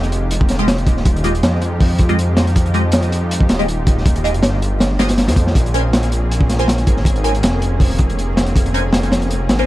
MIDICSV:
0, 0, Header, 1, 5, 480
1, 0, Start_track
1, 0, Key_signature, -4, "minor"
1, 0, Tempo, 375000
1, 1350, Time_signature, 4, 2, 24, 8
1, 12369, End_track
2, 0, Start_track
2, 0, Title_t, "Synth stab"
2, 0, Program_c, 0, 62
2, 757, Note_on_c, 0, 56, 101
2, 757, Note_on_c, 0, 65, 95
2, 757, Note_on_c, 0, 67, 91
2, 757, Note_on_c, 0, 75, 112
2, 855, Note_off_c, 0, 65, 0
2, 855, Note_off_c, 0, 67, 0
2, 856, Note_off_c, 0, 56, 0
2, 856, Note_off_c, 0, 75, 0
2, 1587, Note_on_c, 0, 65, 84
2, 1587, Note_on_c, 0, 67, 84
2, 1587, Note_on_c, 0, 75, 100
2, 1588, Note_on_c, 0, 56, 90
2, 1701, Note_off_c, 0, 56, 0
2, 1701, Note_off_c, 0, 65, 0
2, 1701, Note_off_c, 0, 67, 0
2, 1701, Note_off_c, 0, 75, 0
2, 2676, Note_on_c, 0, 56, 98
2, 2676, Note_on_c, 0, 67, 89
2, 2677, Note_on_c, 0, 65, 90
2, 2677, Note_on_c, 0, 75, 107
2, 2775, Note_off_c, 0, 56, 0
2, 2775, Note_off_c, 0, 67, 0
2, 2776, Note_off_c, 0, 65, 0
2, 2776, Note_off_c, 0, 75, 0
2, 3507, Note_on_c, 0, 65, 84
2, 3507, Note_on_c, 0, 67, 84
2, 3507, Note_on_c, 0, 75, 98
2, 3508, Note_on_c, 0, 56, 91
2, 3621, Note_off_c, 0, 56, 0
2, 3621, Note_off_c, 0, 65, 0
2, 3621, Note_off_c, 0, 67, 0
2, 3621, Note_off_c, 0, 75, 0
2, 4596, Note_on_c, 0, 65, 89
2, 4596, Note_on_c, 0, 67, 95
2, 4596, Note_on_c, 0, 75, 107
2, 4597, Note_on_c, 0, 56, 98
2, 4695, Note_off_c, 0, 56, 0
2, 4695, Note_off_c, 0, 65, 0
2, 4695, Note_off_c, 0, 67, 0
2, 4695, Note_off_c, 0, 75, 0
2, 5429, Note_on_c, 0, 56, 91
2, 5430, Note_on_c, 0, 65, 84
2, 5430, Note_on_c, 0, 67, 85
2, 5430, Note_on_c, 0, 75, 99
2, 5542, Note_off_c, 0, 56, 0
2, 5542, Note_off_c, 0, 65, 0
2, 5542, Note_off_c, 0, 67, 0
2, 5542, Note_off_c, 0, 75, 0
2, 6388, Note_on_c, 0, 75, 105
2, 6389, Note_on_c, 0, 56, 95
2, 6389, Note_on_c, 0, 65, 89
2, 6389, Note_on_c, 0, 67, 88
2, 6502, Note_off_c, 0, 56, 0
2, 6502, Note_off_c, 0, 65, 0
2, 6502, Note_off_c, 0, 67, 0
2, 6502, Note_off_c, 0, 75, 0
2, 7350, Note_on_c, 0, 61, 95
2, 7350, Note_on_c, 0, 70, 85
2, 7350, Note_on_c, 0, 72, 83
2, 7350, Note_on_c, 0, 80, 101
2, 7462, Note_off_c, 0, 61, 0
2, 7462, Note_off_c, 0, 70, 0
2, 7462, Note_off_c, 0, 72, 0
2, 7462, Note_off_c, 0, 80, 0
2, 8439, Note_on_c, 0, 70, 92
2, 8440, Note_on_c, 0, 61, 97
2, 8440, Note_on_c, 0, 72, 90
2, 8440, Note_on_c, 0, 80, 106
2, 8537, Note_off_c, 0, 61, 0
2, 8537, Note_off_c, 0, 70, 0
2, 8537, Note_off_c, 0, 72, 0
2, 8537, Note_off_c, 0, 80, 0
2, 9270, Note_on_c, 0, 61, 92
2, 9270, Note_on_c, 0, 70, 87
2, 9270, Note_on_c, 0, 72, 83
2, 9270, Note_on_c, 0, 80, 104
2, 9382, Note_off_c, 0, 61, 0
2, 9382, Note_off_c, 0, 70, 0
2, 9382, Note_off_c, 0, 72, 0
2, 9382, Note_off_c, 0, 80, 0
2, 11190, Note_on_c, 0, 61, 94
2, 11190, Note_on_c, 0, 70, 84
2, 11190, Note_on_c, 0, 72, 84
2, 11190, Note_on_c, 0, 80, 101
2, 11302, Note_off_c, 0, 61, 0
2, 11302, Note_off_c, 0, 70, 0
2, 11302, Note_off_c, 0, 72, 0
2, 11303, Note_off_c, 0, 80, 0
2, 12277, Note_on_c, 0, 80, 110
2, 12278, Note_on_c, 0, 61, 104
2, 12278, Note_on_c, 0, 70, 92
2, 12278, Note_on_c, 0, 72, 89
2, 12369, Note_off_c, 0, 61, 0
2, 12369, Note_off_c, 0, 70, 0
2, 12369, Note_off_c, 0, 72, 0
2, 12369, Note_off_c, 0, 80, 0
2, 12369, End_track
3, 0, Start_track
3, 0, Title_t, "Analog synth pad"
3, 0, Program_c, 1, 89
3, 0, Note_on_c, 1, 56, 82
3, 0, Note_on_c, 1, 63, 77
3, 0, Note_on_c, 1, 65, 74
3, 0, Note_on_c, 1, 67, 89
3, 7058, Note_off_c, 1, 56, 0
3, 7059, Note_off_c, 1, 63, 0
3, 7059, Note_off_c, 1, 65, 0
3, 7059, Note_off_c, 1, 67, 0
3, 7107, Note_on_c, 1, 61, 72
3, 7108, Note_on_c, 1, 58, 80
3, 7110, Note_on_c, 1, 60, 75
3, 7110, Note_on_c, 1, 68, 92
3, 12369, Note_off_c, 1, 58, 0
3, 12369, Note_off_c, 1, 60, 0
3, 12369, Note_off_c, 1, 61, 0
3, 12369, Note_off_c, 1, 68, 0
3, 12369, End_track
4, 0, Start_track
4, 0, Title_t, "Detuned saw bass"
4, 0, Program_c, 2, 39
4, 0, Note_on_c, 2, 29, 101
4, 1088, Note_off_c, 2, 29, 0
4, 1108, Note_on_c, 2, 27, 81
4, 1811, Note_off_c, 2, 27, 0
4, 1830, Note_on_c, 2, 41, 104
4, 4452, Note_off_c, 2, 41, 0
4, 4469, Note_on_c, 2, 27, 95
4, 5556, Note_on_c, 2, 31, 88
4, 5575, Note_off_c, 2, 27, 0
4, 6757, Note_on_c, 2, 41, 100
4, 6776, Note_off_c, 2, 31, 0
4, 6858, Note_off_c, 2, 41, 0
4, 6864, Note_on_c, 2, 41, 99
4, 7085, Note_off_c, 2, 41, 0
4, 7106, Note_on_c, 2, 34, 98
4, 8770, Note_off_c, 2, 34, 0
4, 8793, Note_on_c, 2, 32, 82
4, 9494, Note_off_c, 2, 32, 0
4, 9510, Note_on_c, 2, 29, 99
4, 12132, Note_off_c, 2, 29, 0
4, 12149, Note_on_c, 2, 32, 96
4, 12369, Note_off_c, 2, 32, 0
4, 12369, End_track
5, 0, Start_track
5, 0, Title_t, "Drums"
5, 44, Note_on_c, 9, 42, 41
5, 156, Note_off_c, 9, 42, 0
5, 156, Note_on_c, 9, 42, 67
5, 284, Note_off_c, 9, 42, 0
5, 394, Note_on_c, 9, 42, 89
5, 522, Note_off_c, 9, 42, 0
5, 523, Note_on_c, 9, 36, 102
5, 623, Note_on_c, 9, 42, 68
5, 639, Note_on_c, 9, 38, 56
5, 651, Note_off_c, 9, 36, 0
5, 751, Note_off_c, 9, 42, 0
5, 753, Note_on_c, 9, 42, 46
5, 767, Note_off_c, 9, 38, 0
5, 870, Note_on_c, 9, 38, 127
5, 872, Note_off_c, 9, 42, 0
5, 872, Note_on_c, 9, 42, 80
5, 998, Note_off_c, 9, 38, 0
5, 1000, Note_off_c, 9, 42, 0
5, 1001, Note_on_c, 9, 42, 40
5, 1108, Note_on_c, 9, 36, 100
5, 1111, Note_off_c, 9, 42, 0
5, 1111, Note_on_c, 9, 42, 72
5, 1236, Note_off_c, 9, 36, 0
5, 1239, Note_off_c, 9, 42, 0
5, 1239, Note_on_c, 9, 38, 40
5, 1349, Note_on_c, 9, 42, 82
5, 1351, Note_on_c, 9, 36, 124
5, 1367, Note_off_c, 9, 38, 0
5, 1477, Note_off_c, 9, 42, 0
5, 1479, Note_off_c, 9, 36, 0
5, 1491, Note_on_c, 9, 42, 43
5, 1588, Note_off_c, 9, 42, 0
5, 1588, Note_on_c, 9, 42, 68
5, 1716, Note_off_c, 9, 42, 0
5, 1725, Note_on_c, 9, 42, 44
5, 1831, Note_off_c, 9, 42, 0
5, 1831, Note_on_c, 9, 42, 83
5, 1834, Note_on_c, 9, 38, 124
5, 1959, Note_off_c, 9, 42, 0
5, 1962, Note_off_c, 9, 38, 0
5, 2069, Note_on_c, 9, 42, 71
5, 2197, Note_off_c, 9, 42, 0
5, 2310, Note_on_c, 9, 36, 114
5, 2314, Note_on_c, 9, 46, 79
5, 2438, Note_off_c, 9, 36, 0
5, 2442, Note_off_c, 9, 46, 0
5, 2540, Note_on_c, 9, 42, 81
5, 2551, Note_on_c, 9, 36, 100
5, 2668, Note_off_c, 9, 42, 0
5, 2675, Note_on_c, 9, 42, 39
5, 2679, Note_off_c, 9, 36, 0
5, 2800, Note_off_c, 9, 42, 0
5, 2800, Note_on_c, 9, 42, 66
5, 2928, Note_off_c, 9, 42, 0
5, 3029, Note_on_c, 9, 38, 113
5, 3033, Note_on_c, 9, 42, 79
5, 3157, Note_off_c, 9, 38, 0
5, 3161, Note_off_c, 9, 42, 0
5, 3166, Note_on_c, 9, 42, 43
5, 3275, Note_off_c, 9, 42, 0
5, 3275, Note_on_c, 9, 36, 109
5, 3275, Note_on_c, 9, 42, 93
5, 3402, Note_off_c, 9, 42, 0
5, 3402, Note_on_c, 9, 42, 42
5, 3403, Note_off_c, 9, 36, 0
5, 3509, Note_off_c, 9, 42, 0
5, 3509, Note_on_c, 9, 42, 72
5, 3637, Note_off_c, 9, 42, 0
5, 3735, Note_on_c, 9, 42, 93
5, 3753, Note_on_c, 9, 38, 115
5, 3863, Note_off_c, 9, 42, 0
5, 3873, Note_on_c, 9, 42, 48
5, 3881, Note_off_c, 9, 38, 0
5, 3998, Note_off_c, 9, 42, 0
5, 3998, Note_on_c, 9, 42, 77
5, 4126, Note_off_c, 9, 42, 0
5, 4239, Note_on_c, 9, 42, 90
5, 4358, Note_on_c, 9, 36, 106
5, 4367, Note_off_c, 9, 42, 0
5, 4469, Note_on_c, 9, 42, 78
5, 4473, Note_on_c, 9, 38, 112
5, 4486, Note_off_c, 9, 36, 0
5, 4597, Note_off_c, 9, 42, 0
5, 4601, Note_off_c, 9, 38, 0
5, 4602, Note_on_c, 9, 42, 40
5, 4715, Note_off_c, 9, 42, 0
5, 4715, Note_on_c, 9, 42, 66
5, 4843, Note_off_c, 9, 42, 0
5, 4950, Note_on_c, 9, 42, 76
5, 4952, Note_on_c, 9, 36, 104
5, 5078, Note_off_c, 9, 42, 0
5, 5080, Note_off_c, 9, 36, 0
5, 5092, Note_on_c, 9, 38, 36
5, 5192, Note_on_c, 9, 36, 122
5, 5194, Note_on_c, 9, 42, 92
5, 5220, Note_off_c, 9, 38, 0
5, 5320, Note_off_c, 9, 36, 0
5, 5321, Note_off_c, 9, 42, 0
5, 5321, Note_on_c, 9, 42, 46
5, 5440, Note_off_c, 9, 42, 0
5, 5440, Note_on_c, 9, 42, 72
5, 5559, Note_off_c, 9, 42, 0
5, 5559, Note_on_c, 9, 42, 44
5, 5665, Note_on_c, 9, 38, 120
5, 5673, Note_off_c, 9, 42, 0
5, 5673, Note_on_c, 9, 42, 98
5, 5793, Note_off_c, 9, 38, 0
5, 5801, Note_off_c, 9, 42, 0
5, 5917, Note_on_c, 9, 42, 67
5, 6045, Note_off_c, 9, 42, 0
5, 6149, Note_on_c, 9, 38, 103
5, 6154, Note_on_c, 9, 42, 81
5, 6277, Note_off_c, 9, 38, 0
5, 6282, Note_off_c, 9, 42, 0
5, 6392, Note_on_c, 9, 38, 110
5, 6397, Note_on_c, 9, 42, 87
5, 6513, Note_off_c, 9, 42, 0
5, 6513, Note_on_c, 9, 42, 84
5, 6520, Note_off_c, 9, 38, 0
5, 6526, Note_on_c, 9, 38, 95
5, 6627, Note_off_c, 9, 38, 0
5, 6627, Note_on_c, 9, 38, 108
5, 6629, Note_off_c, 9, 42, 0
5, 6629, Note_on_c, 9, 42, 79
5, 6755, Note_off_c, 9, 38, 0
5, 6755, Note_on_c, 9, 38, 101
5, 6757, Note_off_c, 9, 42, 0
5, 6764, Note_on_c, 9, 42, 88
5, 6864, Note_on_c, 9, 36, 88
5, 6868, Note_off_c, 9, 42, 0
5, 6868, Note_on_c, 9, 42, 62
5, 6883, Note_off_c, 9, 38, 0
5, 6992, Note_off_c, 9, 36, 0
5, 6996, Note_off_c, 9, 42, 0
5, 7001, Note_on_c, 9, 38, 57
5, 7106, Note_on_c, 9, 36, 113
5, 7113, Note_on_c, 9, 42, 88
5, 7129, Note_off_c, 9, 38, 0
5, 7234, Note_off_c, 9, 36, 0
5, 7241, Note_off_c, 9, 42, 0
5, 7246, Note_on_c, 9, 42, 43
5, 7350, Note_off_c, 9, 42, 0
5, 7350, Note_on_c, 9, 42, 73
5, 7478, Note_off_c, 9, 42, 0
5, 7595, Note_on_c, 9, 38, 124
5, 7595, Note_on_c, 9, 42, 84
5, 7716, Note_off_c, 9, 42, 0
5, 7716, Note_on_c, 9, 42, 48
5, 7723, Note_off_c, 9, 38, 0
5, 7834, Note_off_c, 9, 42, 0
5, 7834, Note_on_c, 9, 42, 70
5, 7962, Note_off_c, 9, 42, 0
5, 8084, Note_on_c, 9, 42, 81
5, 8200, Note_on_c, 9, 36, 92
5, 8212, Note_off_c, 9, 42, 0
5, 8314, Note_on_c, 9, 38, 60
5, 8315, Note_on_c, 9, 42, 67
5, 8328, Note_off_c, 9, 36, 0
5, 8436, Note_off_c, 9, 42, 0
5, 8436, Note_on_c, 9, 42, 44
5, 8442, Note_off_c, 9, 38, 0
5, 8550, Note_on_c, 9, 38, 119
5, 8564, Note_off_c, 9, 42, 0
5, 8565, Note_on_c, 9, 42, 92
5, 8678, Note_off_c, 9, 38, 0
5, 8680, Note_off_c, 9, 42, 0
5, 8680, Note_on_c, 9, 42, 46
5, 8792, Note_off_c, 9, 42, 0
5, 8792, Note_on_c, 9, 42, 66
5, 8794, Note_on_c, 9, 36, 99
5, 8918, Note_on_c, 9, 38, 40
5, 8920, Note_off_c, 9, 42, 0
5, 8922, Note_off_c, 9, 36, 0
5, 9025, Note_on_c, 9, 36, 108
5, 9035, Note_on_c, 9, 42, 85
5, 9046, Note_off_c, 9, 38, 0
5, 9153, Note_off_c, 9, 36, 0
5, 9161, Note_off_c, 9, 42, 0
5, 9161, Note_on_c, 9, 42, 42
5, 9273, Note_off_c, 9, 42, 0
5, 9273, Note_on_c, 9, 42, 69
5, 9401, Note_off_c, 9, 42, 0
5, 9403, Note_on_c, 9, 42, 43
5, 9512, Note_off_c, 9, 42, 0
5, 9512, Note_on_c, 9, 42, 100
5, 9521, Note_on_c, 9, 38, 120
5, 9640, Note_off_c, 9, 42, 0
5, 9649, Note_off_c, 9, 38, 0
5, 9753, Note_on_c, 9, 42, 76
5, 9881, Note_off_c, 9, 42, 0
5, 9985, Note_on_c, 9, 36, 103
5, 9989, Note_on_c, 9, 46, 89
5, 10113, Note_off_c, 9, 36, 0
5, 10117, Note_off_c, 9, 46, 0
5, 10221, Note_on_c, 9, 42, 83
5, 10231, Note_on_c, 9, 36, 102
5, 10349, Note_off_c, 9, 42, 0
5, 10359, Note_off_c, 9, 36, 0
5, 10364, Note_on_c, 9, 42, 40
5, 10479, Note_off_c, 9, 42, 0
5, 10479, Note_on_c, 9, 42, 62
5, 10607, Note_off_c, 9, 42, 0
5, 10715, Note_on_c, 9, 38, 116
5, 10719, Note_on_c, 9, 42, 84
5, 10835, Note_off_c, 9, 42, 0
5, 10835, Note_on_c, 9, 42, 45
5, 10843, Note_off_c, 9, 38, 0
5, 10952, Note_on_c, 9, 36, 108
5, 10960, Note_off_c, 9, 42, 0
5, 10960, Note_on_c, 9, 42, 89
5, 11080, Note_off_c, 9, 36, 0
5, 11083, Note_off_c, 9, 42, 0
5, 11083, Note_on_c, 9, 42, 43
5, 11193, Note_off_c, 9, 42, 0
5, 11193, Note_on_c, 9, 42, 73
5, 11321, Note_off_c, 9, 42, 0
5, 11424, Note_on_c, 9, 38, 126
5, 11440, Note_on_c, 9, 42, 92
5, 11552, Note_off_c, 9, 38, 0
5, 11561, Note_off_c, 9, 42, 0
5, 11561, Note_on_c, 9, 42, 47
5, 11670, Note_on_c, 9, 38, 105
5, 11682, Note_off_c, 9, 42, 0
5, 11682, Note_on_c, 9, 42, 80
5, 11798, Note_off_c, 9, 38, 0
5, 11799, Note_off_c, 9, 42, 0
5, 11799, Note_on_c, 9, 42, 43
5, 11912, Note_off_c, 9, 42, 0
5, 11912, Note_on_c, 9, 42, 68
5, 12040, Note_off_c, 9, 42, 0
5, 12149, Note_on_c, 9, 42, 74
5, 12152, Note_on_c, 9, 38, 110
5, 12271, Note_off_c, 9, 42, 0
5, 12271, Note_on_c, 9, 42, 37
5, 12280, Note_off_c, 9, 38, 0
5, 12369, Note_off_c, 9, 42, 0
5, 12369, End_track
0, 0, End_of_file